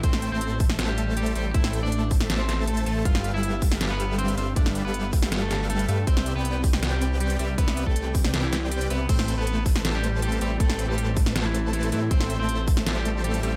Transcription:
<<
  \new Staff \with { instrumentName = "Supersaw synth" } { \time 4/4 \key a \minor \tempo 4 = 159 <a a' c'' e'' g''>8. <a a' c'' e'' a''>2~ <a a' c'' e'' a''>8. <a a' c'' e'' g''>16 r16 | <a a' c'' e'' g''>8. <a a' c'' e'' a''>2~ <a a' c'' e'' a''>8. <a a' c'' e'' a''>8 | <g g' b' e'' f''>8. <g g' a' b' e'' f''>2~ <g g' a' b' e'' f''>8. <g g' a' b' e'' f''>16 r16 | <g g' a' b' e'' f''>8. <g g' a' b' e'' f''>2~ <g g' a' b' e'' f''>8. <g g' a' b' e'' f''>16 r16 |
<c' g' b' d'' e''>8. <c' g' b' d'' g''>2~ <c' g' b' d'' g''>8. <c' g' b' d'' e''>16 r16 | <c' g' b' d'' e''>8. <c' g' b' d'' g''>2~ <c' g' b' d'' g''>8. <c' g' b' d'' e''>16 r16 | <a a' b' c'' g''>8. <a a' b' c'' a''>2~ <a a' b' c'' a''>8. <a a' b' c'' e''>16 r16 | <a a' b' c'' g''>8. <a a' b' c'' a''>2~ <a a' b' c'' a''>8. <a a' b' c'' e''>16 r16 |
<a a' c'' e'' g''>8. <a a' c'' e'' a''>2~ <a a' c'' e'' a''>8. <a a' c'' e'' g''>16 r16 | }
  \new Staff \with { instrumentName = "Clean electric guitar" } { \time 4/4 \key a \minor <c' c''>8. <c' c''>8. r8. <g g'>8. <g g'>8 <g g'>8 | <e' e''>8. <d' d''>8. r8. <c' c''>8. <a a'>8 <a a'>8 | <f' f''>8. <e' e''>8. r8. <b b'>8. <c' c''>8 <c' c''>8 | <d' d''>8. <b b'>8. r8. <a a'>8. <a a'>8 <a a'>8 |
<c' c''>8. <b b'>8. r8. <g g'>8. <g g'>8 <g g'>8 | <b b'>8. <a a'>8. r8. <e e'>8. <g g'>8 <b b'>8 | <c' c''>8. <b b'>8. r8. <g g'>8. <g g'>8 <g g'>8 | <a a'>8. <g g'>8. r8. <e e'>8. <e e'>8 <e e'>8 |
<c' c''>8. <c' c''>8. r8. <g g'>8. <g g'>8 <g g'>8 | }
  \new Staff \with { instrumentName = "String section" } { \time 4/4 \key a \minor << { r1 | r1 | r1 | r1 |
r1 | r1 | <g c'>1~ | <g c'>1 |
<f c'>1 | } \\ { r1 | r1 | r1 | r1 |
r1 | r1 | a1~ | a1~ |
a1 | } >> }
  \new Staff \with { instrumentName = "Detuned saw bass" } { \clef bass \time 4/4 \key a \minor a,,8. a,,2~ a,,8. a,,8 | a,,8. a,,2~ a,,8. a,,8 | g,,8. g,,2~ g,,8. g,,8 | g,,8. g,,2~ g,,8. g,8 |
c,8. c,2~ c,8. c,8 | c,8. c,2~ c,8. c,8 | a,,8. a,,2~ a,,8. a,,8 | a,,8. a,,2~ a,,8. a,8 |
a,,8. a,,2~ a,,8. a,,8 | }
  \new DrumStaff \with { instrumentName = "Drums" } \drummode { \time 4/4 <hh bd>16 sn16 hh8 hh8 <hho bd>16 sn16 <hh sn>8 hh8 hh16 hh16 hh8 | <hh bd>16 sn16 hh8 hh8 <hho bd>16 sn16 <hh sn>8 <hh sn>8 hh16 hh16 hh8 | <hh bd>16 sn16 hh8 hh8 <hho bd>16 sn16 <hh sn>8 hh8 hh16 hh16 hh8 | <hh bd>16 sn16 hh8 hh8 <hho bd>16 sn16 <hh sn>8 <hh sn>8 hh16 hh16 hh8 |
<hh bd>16 sn16 hh8 hh8 <hho bd>16 sn16 <hh sn>8 hh8 hh16 hh16 hh8 | <hh bd>16 sn16 hh16 bd16 hh8 <hho bd>16 sn16 <hh sn>8 <hh sn>8 hh16 hh16 hh8 | <cymc hh bd>16 sn16 hh8 hh8 <hho bd>16 sn16 <hh sn>8 hh8 hh16 hh16 hh8 | <hh bd>16 sn16 hh8 hh8 <hho bd>16 sn16 <hh sn>8 hh8 hh16 hh16 hh8 |
<hh bd>16 sn16 hh8 hh8 <hho bd>16 sn16 <hh sn>8 hh8 hh16 hh16 hh8 | }
>>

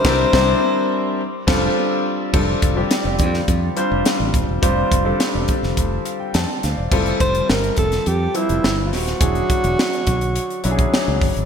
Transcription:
<<
  \new Staff \with { instrumentName = "Alto saxophone" } { \time 4/4 \key f \major \tempo 4 = 105 c''2~ c''8 r4. | r1 | r1 | r8 c''8 bes'8 a'8 g'8 e'8.~ e'32 f'32 ges'8~ |
ges'2.~ ges'8 r8 | }
  \new Staff \with { instrumentName = "Grand piano" } { \time 4/4 \key f \major << { r1 | r1 | r2 r8 f''16 g''16 a''8 f''16 d''16~ | d''16 r2. r8. |
r1 | } \\ { <g c' d' e' bes'>8 <g c' d' e' bes'>8 r4. <g c' d' f' a'>8 r4 | <g c' d' f' a'>8 r16 <g c' d' f' g'>4 r8. <g c' d' f' c''>4 r8 | <g c' d' f' c''>8 r16 <g c' d' f' a'>4 r2 r16 | <g c' e' f' a'>4~ <g c' e' f' a'>16 r4 r16 <f g c' e' b' c''>4 r8 |
<fis cis' d' e' gis'>4~ <fis cis' d' e' gis'>16 r4 r16 <fis cis' d' e' fis' gis'>4 r8 | } >> }
  \new Staff \with { instrumentName = "Fingered electric bass" } { \clef bass \time 4/4 \key f \major c,8 c,8 r4. f,,8 r4 | f,,8 f,,8 r16 f,,16 f,8 f,8 r16 f,,16 r16 a,,16 ees,,16 e,,16 | f,,8 f,,8 r16 e,,16 r16 f,,16 f,,8 r8 f,16 r16 d,16 e,,16 | f,,8 f,,8 g,,8 f,,8 f,8 r16 f,,16 g,,8 ees,,8 |
e,,8 r16 e,,16 r8 b,,8. r16 b,,8 r16 cis,16 g,,16 gis,,16 | }
  \new DrumStaff \with { instrumentName = "Drums" } \drummode { \time 4/4 <cymc bd sn>8 <bd sn>8 r4 r8 <cymc bd sn>8 r4 | <cymc bd>8 <hh bd>8 <hh sn>8 <hh bd>16 sn16 <hh bd>8 hh8 <hh sn>8 <hh bd>8 | <hh bd>8 <hh bd>8 <hh sn>8 <hh bd>16 sn16 <hh bd>8 hh8 <hh sn>8 <hh sn>8 | <cymc bd>16 hh16 <hh bd>16 hh16 sn16 hh16 <hh bd>16 <hh sn>16 hh8 hh16 hh16 sn8 <hho sn>16 <hh sn>16 |
<hh bd>16 hh16 <hh bd>16 hh16 sn16 hh16 <hh bd>16 hh16 hh16 hh16 hh16 <hh bd>16 sn8 <hho bd>16 hh16 | }
>>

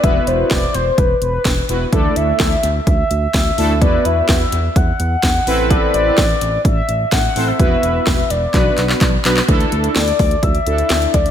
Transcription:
<<
  \new Staff \with { instrumentName = "Soft synth lead" } { \time 4/4 \key d \mixolydian \tempo 4 = 127 e''8 c''8 d''8 c''8 b'8 b'4 r8 | d''8 e''4. e''2 | d''8 e''4. fis''2 | d''8 d''4. e''4 fis''8. e''16 |
e''4. d''4. r4 | r4 d''4 e''4. d''8 | }
  \new Staff \with { instrumentName = "Analog polysynth" } { \time 4/4 \key d \mixolydian <b e' fis' b'>4~ <b e' fis' b'>16 r2 r16 <b e' fis' b'>8 | <a d' e' a'>4~ <a d' e' a'>16 r2 r16 <a d' e' a'>8 | <b e' fis' b'>4~ <b e' fis' b'>16 r2 r16 <c' e' a' b'>8~ | <c' e' a' b'>4 r2 r8 <c' e' a' c''>8 |
<b e' fis' b'>4~ <b e' fis' b'>16 r8. <b d' fis' b'>4 r8 <b d' fis' b'>8 | <d' e' a'>4~ <d' e' a'>16 r4 r16 <d' e' a'>4 r8 | }
  \new Staff \with { instrumentName = "Analog synth bass" } { \clef bass \time 4/4 \key d \mixolydian e,,8 e,,8 e,,8 e,,8 e,,8 e,,8 e,,8 e,,8 | d,8 d,8 d,8 d,8 d,8 d,8 d,8 d,8 | e,8 e,8 e,8 e,8 e,8 e,8 e,8 a,,8~ | a,,8 a,,8 a,,8 a,,8 a,,8 a,,8 a,,8 a,,8 |
e,,8 e,,8 e,,8 e,,8 b,,8 b,,8 b,,8 b,,8 | d,8 d,8 d,8 d,8 d,8 d,8 d,8 d,8 | }
  \new DrumStaff \with { instrumentName = "Drums" } \drummode { \time 4/4 <hh bd>8 hh8 <hc hh bd sn>8 hh8 <hh bd>8 hh8 <hc hh bd sn>8 hh8 | <hh bd>8 hh8 <hc hh bd sn>8 hh8 <hh bd>8 hh8 <hc hh bd sn>8 hho8 | <hh bd>8 hh8 <hc hh bd sn>8 hh8 <hh bd>8 hh8 <hc hh bd sn>8 hho8 | <hh bd>8 hh8 <hc hh bd sn>8 hh8 <hh bd>8 hh8 <hc hh bd sn>8 hho8 |
<hh bd>8 hh8 <hc hh bd sn>8 hh8 <hc hh bd>8 <hc hh>16 hc16 <hc hh bd>8 <hc hh>16 hc16 | <hh bd>16 hh16 hh16 hh16 <hc hh sn>16 hh16 <hho bd>16 hh16 <hh bd>16 hh16 hh16 hh16 <hc hh sn>16 hh16 <hh bd>16 hh16 | }
>>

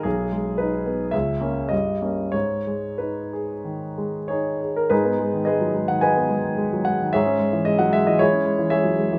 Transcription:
<<
  \new Staff \with { instrumentName = "Grand piano" } { \time 4/4 \key gis \minor \tempo 4 = 108 gis'4 b'4 e''4 dis''4 | cis''4 b'2 <gis' cis''>8. ais'16 | <dis' gis' b'>4 <gis' b' dis''>8. fis''16 <b' dis'' gis''>4. fis''8 | <gis' cis'' e''>4 dis''16 fis''16 e''16 dis''16 <e' gis' cis''>4 <gis' cis'' e''>4 | }
  \new Staff \with { instrumentName = "Grand piano" } { \clef bass \time 4/4 \key gis \minor b,,8 gis8 dis'8 b8 cis,8 <ais cis'>8 g,8 <ais cis'>8 | gis,8 gis8 dis'8 gis'8 dis8 gis8 dis'8 gis'8 | gis,16 b16 gis16 dis16 gis16 fis16 gis16 dis16 gis16 b16 gis16 dis16 gis16 fis16 gis16 dis16 | gis,16 cis'16 gis16 e16 gis16 fis16 gis16 e16 gis16 cis'16 gis16 e16 gis16 fis16 gis16 e16 | }
>>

